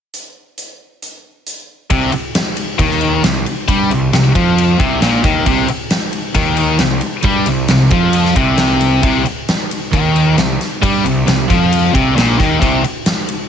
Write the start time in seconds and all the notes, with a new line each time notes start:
0.14 closed hi-hat
0.58 closed hi-hat
1.02 closed hi-hat
1.47 closed hi-hat
1.90 C2 C3, kick, ride
2.12 muted distorted electric guitar stroke, muted picked electric bass stroke, ride
2.35 snare, ride
2.57 ride
2.79 D#2 D#3, kick, ride
2.91 snare
3.01 ride
3.23 C2 C3, snare, ride
3.46 ride
3.68 G2 G3, kick, ride
3.90 C2 C3, ride
4.13 C2 C3, snare, ride
4.35 F2 F3, kick, ride
4.58 ride
4.80 C2 C3, kick, ride
5.02 A#1 A#2, snare, ride
5.24 D#2 D#3, kick, snare, ride
5.46 C2 C3, kick, ride
5.68 muted picked electric bass stroke, muted distorted electric guitar stroke, ride
5.91 snare, ride
6.13 ride
6.34 D#2 D#3, kick, ride
6.57 ride
6.79 C2 C3, snare, ride
7.01 ride
7.23 G2 G3, kick, ride
7.46 C2 C3, ride
7.68 C2 C3, snare, ride
7.91 F2 F3, kick, ride
8.13 ride
8.25 snare
8.36 C2 C3, kick, ride
8.58 snare, ride
8.81 ride
9.03 C2 C3, kick, ride
9.26 muted distorted electric guitar stroke, muted picked electric bass stroke, ride
9.49 snare, ride
9.71 ride
9.93 D#2 D#3, kick, ride
10.16 ride
10.37 C2 C3, snare, ride
10.61 snare, ride
10.82 G2 G3, kick, ride
11.04 C2 C3, ride
11.27 C2 C3, snare, ride
11.50 F2 F3, kick, ride
11.73 ride
11.94 C2 C3, kick, ride
12.16 A#1 A#2, snare, ride
12.38 D#2 D#3, kick, snare, ride
12.61 C2 C3, kick, ride
12.84 muted distorted electric guitar stroke, muted picked electric bass stroke, ride
13.06 snare, ride
13.29 ride